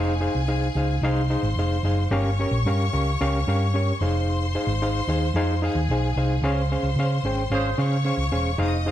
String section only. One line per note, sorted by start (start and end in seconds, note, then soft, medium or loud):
0.00 1.01 G#4 medium
0.00 1.02 G#5 medium
1.03 2.10 C5 medium
1.03 2.10 C6 medium
2.12 3.97 C#5 medium
2.12 3.97 C#6 loud
4.02 5.60 C5 medium
4.02 5.60 C6 loud
5.64 6.43 G#4 medium
5.64 6.43 G#5 medium
6.45 7.77 C5 medium
6.45 7.76 C6 medium
7.79 8.58 C#5 medium
7.79 8.58 C#6 loud
8.61 8.91 D#5 medium
8.61 8.91 D#6 medium